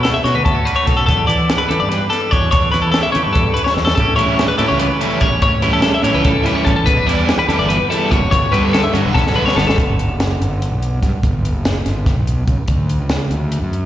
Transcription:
Already playing: B2 D3 C#4 E4
0.03 A3 A4, snare, closed hi-hat
0.14 E5
0.24 B2 D3 F#4 C#5, snare, closed hi-hat
0.35 D2 B4
0.44 B3 A4, kick, closed hi-hat
0.55 C#4
0.65 G3 B4, closed hi-hat
0.75 A3 C#5
0.85 B1 F#2 B3 A4, kick, snare, closed hi-hat
0.97 C#4 A4
1.06 E2 B3 A4, kick, closed hi-hat
1.17 D4
1.27 E3 E4 D5, closed hi-hat
1.50 G3, snare, closed hi-hat
1.58 B4
1.69 E3 G4 A4, closed hi-hat
1.80 G2 D5
1.89 D4 B4, snare, closed hi-hat
2.10 G3 A4, snare, closed hi-hat
2.31 E2 B2 D4 C#5, kick, closed hi-hat
2.51 E2 D4 C#5, kick, closed hi-hat
2.71 E3 E4 B4, snare, closed hi-hat
2.82 A4
2.92 A4, snare, closed hi-hat
2.96 G3
3.03 E5
3.12 E3 C#5, closed hi-hat
3.16 G4
3.23 G2 B4
3.33 E2 A4, kick, closed hi-hat
3.54 F#2 B4, closed hi-hat
3.64 C#5, snare
3.74 E2 G2 A4, snare
3.85 A4, snare
3.95 A1 A2 E3 A4, kick, closed hi-hat
3.99 G3 C#4 G4
4.16 A2 E3 G3 C#4 E4 C#5, closed hi-hat
4.39 G3, snare, closed hi-hat
4.48 B4
4.58 A2 E3 G3 C#4 E4 G4 A4, closed hi-hat
4.68 C#2 C#5
4.79 B3 B4, closed hi-hat
4.91 C#4
4.99 E3 G3 C#4 E4 A4, closed hi-hat
5.21 A1 E2 C#4 C#5, kick, closed hi-hat
5.42 A1 A2 C#4 C#5, kick, closed hi-hat
5.62 A2 E3 G3 C#4 E4 B4, snare, closed hi-hat
5.73 A4
5.82 G3 A4, snare, closed hi-hat
5.94 E5
6.03 A2 E3 G3 C#4 E4 C#5, closed hi-hat
6.14 C#2 G4 B4
6.25 C#4 A4, kick, closed hi-hat
6.43 E3 G3 C#4 E4 B4, snare, closed hi-hat
6.55 C#5
6.65 A1 E2 C#4 A4, kick, closed hi-hat
6.76 A4
6.86 E1 E2 B3 B4, kick, closed hi-hat
6.97 D4
7.06 E2 E3 G3 B3 E4 D5, snare, closed hi-hat
7.29 G3, snare, closed hi-hat
7.39 B4
7.48 E2 E3 G3 B3 E4 G4 A4, closed hi-hat
7.58 G1 D5
7.69 B4, closed hi-hat
7.89 E2 E3 G3 B3 E4 A4, closed hi-hat
8.10 F#1 F#2 C#5, kick, closed hi-hat
8.30 G1 G2 B3 C#5, kick, closed hi-hat
8.42 C#4
8.52 G2 D3 G3 B3 D4 G4 B4, closed hi-hat
8.64 A4
8.73 B3 A4, snare, closed hi-hat
8.84 E5
8.93 G2 D3 G3 B3 D4 F#4 C#5, closed hi-hat
9.04 B1 B4
9.14 C#4 A4, kick, snare
9.27 snare
9.34 D3 G3 B3 D4 B4
9.46 C#5, snare
9.56 G1 G2 B3 A4, snare
9.67 C#4 A4, snare
9.78 G1, kick, closed hi-hat
9.99 closed hi-hat
10.09 F#1
10.20 snare, closed hi-hat
10.40 G1, closed hi-hat
10.62 closed hi-hat
10.71 B1
10.82 closed hi-hat
11.02 G2, kick, snare, closed hi-hat
11.23 G1, kick, closed hi-hat
11.45 closed hi-hat
11.54 F#1
11.65 snare, closed hi-hat
11.85 G1, snare, closed hi-hat
12.06 kick, snare, closed hi-hat
12.16 B1
12.27 closed hi-hat
12.48 C#2, kick, closed hi-hat
12.68 D2, kick, closed hi-hat
12.89 closed hi-hat
13.00 C#2
13.09 snare, closed hi-hat
13.31 D2, closed hi-hat
13.52 closed hi-hat
13.62 F#2
13.73 closed hi-hat

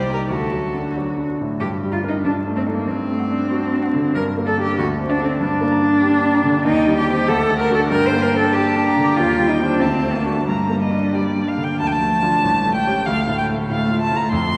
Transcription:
Already playing: C2 G3 G4 C5
0.10 D#4 G4 A#4
0.29 D2 F#4 A4
0.52 F#3
0.74 D4
0.96 F#3
1.18 D4
1.41 A2
1.60 G2 G4
1.83 G3
1.92 F4 A#5
2.04 D4 A#4
2.08 D#4
2.25 G2 D4
2.46 A3
2.56 C4 A5
2.66 D#4 A4
2.73 A#3
2.88 G2 C4
3.09 A3
3.19 F#5
3.30 D4
3.51 F#4
3.73 D4
3.83 F#5
3.94 D3
4.15 G2 A#4
4.37 A#3
4.46 A4 D5
4.58 D4 G4
4.62 G4
4.78 D2 F#4
4.98 C4
5.09 D4 D5
5.20 D4 A4
5.25 C4
5.40 G2 D4
5.61 A#3
5.72 A#5
5.82 D4
6.02 G4
6.23 D4
6.35 A#5
6.44 D3
6.65 D#2 D#4 G5
6.87 G3
6.98 G4
7.08 C4 G4
7.12 G4
7.28 D2 A4 F#5
7.49 A3
7.59 A#4
7.70 D4 F#4
7.75 A4
7.90 G2 A#4 G5
8.06 C5
8.13 A#3
8.22 A#4
8.34 D4
8.38 A4
8.53 G4 A5
8.76 D4
8.86 A#5
8.97 D3
9.16 D#2 F4 G5
9.38 G3
9.49 D#4
9.60 C4 G4
9.65 D4
9.80 D2 C4 A5
10.02 A3
10.14 A#3
10.24 D4 F#4
10.30 A3
10.46 G2 G3 A#5
10.70 A#3
10.82 D#5
10.91 D4
11.13 G4 D5
11.35 D4
11.48 F5
11.57 D3
11.64 G5
11.78 D2 F3 A5
11.87 G5
11.92 A5
12.01 A3
12.22 D4 F4
12.43 A1 G3
12.65 A3
12.75 G5
12.87 C#4 G4
13.06 D2 A3 F5
13.27 A2
13.38 G5
13.48 A3
13.70 A2 F5
13.91 F4
14.01 A5
14.11 A2
14.16 A#5
14.32 F2 C6
14.53 A3

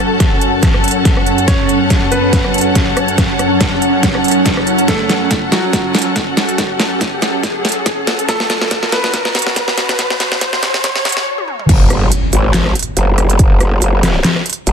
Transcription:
Already playing: F#2 F#3 C#4 A4 F#5 A5, riser
0.20 kick, snare, closed hi-hat
0.41 closed hi-hat
0.63 kick, snare, closed hi-hat
0.74 cross-stick
0.84 closed hi-hat
0.88 closed hi-hat
0.91 closed hi-hat
1.05 kick, snare, closed hi-hat
1.17 cross-stick
1.27 closed hi-hat
1.38 closed hi-hat
1.48 C#4 C#5, kick, snare, closed hi-hat
1.69 closed hi-hat
1.90 kick, snare, closed hi-hat
2.12 B3 B4, closed hi-hat
2.33 kick, snare, closed hi-hat
2.44 cross-stick
2.54 closed hi-hat
2.58 closed hi-hat
2.61 closed hi-hat
2.75 kick, snare, closed hi-hat
2.97 cross-stick, closed hi-hat
3.08 closed hi-hat
3.18 kick, snare, closed hi-hat
3.39 cross-stick, closed hi-hat
3.61 kick, snare, closed hi-hat
3.82 closed hi-hat
4.03 kick, snare, closed hi-hat
4.15 cross-stick
4.24 closed hi-hat
4.28 closed hi-hat
4.31 closed hi-hat
4.46 kick, snare, closed hi-hat
4.57 cross-stick
4.67 closed hi-hat
4.78 closed hi-hat
4.88 A3 A4, kick, snare, closed hi-hat
5.09 snare, closed hi-hat
5.31 kick, snare, closed hi-hat
5.52 F#3 F#4, snare, closed hi-hat
5.73 kick, snare, closed hi-hat
5.95 snare, closed hi-hat
5.98 closed hi-hat
6.02 closed hi-hat
6.16 kick, snare, closed hi-hat
6.37 snare, closed hi-hat
6.49 closed hi-hat
6.58 kick, snare, closed hi-hat
6.80 snare, closed hi-hat
7.01 kick, snare, closed hi-hat
7.22 snare, closed hi-hat
7.43 kick, snare, closed hi-hat
7.65 snare, closed hi-hat
7.69 closed hi-hat
7.72 closed hi-hat
7.86 kick, snare, closed hi-hat
8.07 snare, closed hi-hat
8.19 closed hi-hat
8.29 A3 F#4 A4, kick, snare, closed hi-hat
8.40 snare
8.50 snare, closed hi-hat
8.61 snare
8.71 kick, snare, closed hi-hat
8.83 snare
8.92 B3 B4, snare, closed hi-hat
9.04 snare
9.14 kick, snare, closed hi-hat
9.25 snare
9.35 snare, closed hi-hat
9.39 closed hi-hat
9.42 closed hi-hat
9.47 snare
9.56 kick, snare, closed hi-hat
9.68 snare
9.78 snare, closed hi-hat
9.89 snare, closed hi-hat
9.99 kick, snare, closed hi-hat
10.10 snare
10.20 snare, closed hi-hat
10.32 snare
10.41 kick, snare, closed hi-hat
10.53 snare
10.63 snare, closed hi-hat
10.74 snare
10.84 kick, snare, closed hi-hat
10.96 snare
11.05 snare, closed hi-hat
11.09 closed hi-hat
11.12 closed hi-hat
11.17 snare
11.38 high tom
11.48 mid tom
11.59 mid tom
11.69 F#1, kick, closed hi-hat, crash, impact
11.90 cross-stick, closed hi-hat
12.12 closed hi-hat
12.33 G#1, open hi-hat
12.54 snare, clap, closed hi-hat
12.66 cross-stick
12.75 closed hi-hat
12.79 closed hi-hat
12.83 closed hi-hat
12.97 F#1, closed hi-hat
13.18 cross-stick, closed hi-hat
13.30 closed hi-hat
13.39 F#1, kick, closed hi-hat
13.61 cross-stick, closed hi-hat
13.82 F#1, closed hi-hat
14.03 snare, open hi-hat
14.24 snare, clap, closed hi-hat
14.36 cross-stick
14.46 closed hi-hat
14.50 closed hi-hat
14.53 closed hi-hat
14.67 F#1, closed hi-hat

